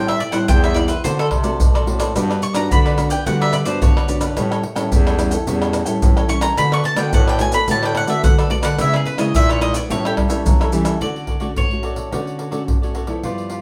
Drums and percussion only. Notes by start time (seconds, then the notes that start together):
0.09 pandeiro, tamborim, maracas
0.20 pandeiro
0.33 pandeiro, tamborim, maracas
0.49 pandeiro, maracas, surdo
0.64 pandeiro, tamborim, maracas
0.76 pandeiro, tamborim, maracas
0.88 pandeiro, maracas
1.05 pandeiro, maracas, surdo
1.19 pandeiro, tamborim, maracas
1.31 pandeiro, tamborim, surdo
1.44 pandeiro, maracas
1.60 pandeiro, maracas, surdo
1.75 pandeiro, tamborim, maracas
1.87 pandeiro
2.00 pandeiro, tamborim, maracas
2.16 pandeiro, tamborim, maracas, surdo
2.31 pandeiro, tamborim, maracas
2.42 pandeiro, maracas
2.55 pandeiro, tamborim, maracas
2.71 pandeiro, maracas, surdo
2.86 pandeiro, tamborim, maracas
2.98 pandeiro, tamborim, maracas
3.10 pandeiro, maracas
3.26 pandeiro, maracas, surdo
3.42 pandeiro, tamborim, maracas
3.53 pandeiro, tamborim, maracas
3.66 pandeiro, maracas
3.82 pandeiro, maracas, surdo
3.97 pandeiro, tamborim, maracas
4.09 pandeiro, maracas
4.21 pandeiro, tamborim, maracas
4.37 pandeiro, tamborim, maracas, surdo
4.52 pandeiro, tamborim, maracas
4.63 pandeiro
4.76 pandeiro, tamborim, maracas
4.92 pandeiro, maracas, surdo
5.07 pandeiro, tamborim, maracas
5.19 pandeiro, tamborim, maracas
5.31 pandeiro, maracas
5.47 pandeiro, maracas, surdo
5.62 pandeiro, tamborim, maracas
5.73 pandeiro, tamborim, maracas
5.86 pandeiro, maracas
6.02 pandeiro, maracas, surdo
6.17 pandeiro, tamborim, maracas
6.29 pandeiro, maracas
6.41 pandeiro, tamborim, maracas
6.58 pandeiro, tamborim, maracas, surdo
6.72 pandeiro, tamborim, maracas
6.84 pandeiro
6.97 pandeiro, tamborim, maracas
7.13 pandeiro, maracas, surdo
7.28 pandeiro, tamborim, maracas
7.39 pandeiro, tamborim, maracas
7.52 pandeiro, maracas
7.68 pandeiro, maracas, surdo
7.83 pandeiro, tamborim, maracas
7.95 pandeiro, tamborim
8.07 pandeiro, maracas
8.24 pandeiro, maracas, surdo
8.39 pandeiro, tamborim, maracas
8.50 pandeiro
8.63 pandeiro, tamborim, maracas
8.79 pandeiro, tamborim, maracas, surdo
8.94 pandeiro, tamborim, maracas
9.05 pandeiro
9.18 pandeiro, tamborim, maracas
9.35 pandeiro, maracas, surdo
9.49 pandeiro, tamborim, maracas
9.61 pandeiro, tamborim
9.74 pandeiro, maracas
9.90 pandeiro, maracas, surdo
10.05 pandeiro, tamborim, maracas
10.17 pandeiro, tamborim, surdo
10.30 pandeiro, maracas
10.46 pandeiro, maracas, surdo
10.61 pandeiro, tamborim, maracas
10.72 pandeiro, maracas
10.85 pandeiro, tamborim, maracas
11.01 pandeiro, surdo
11.16 pandeiro
11.27 pandeiro, surdo
11.40 pandeiro
11.56 pandeiro, surdo
11.71 pandeiro
11.83 pandeiro
11.96 pandeiro
12.12 pandeiro, surdo
12.27 pandeiro
12.39 pandeiro
12.52 pandeiro
12.68 pandeiro, surdo
12.83 pandeiro
12.95 pandeiro
13.07 pandeiro
13.23 pandeiro, surdo
13.38 pandeiro
13.50 pandeiro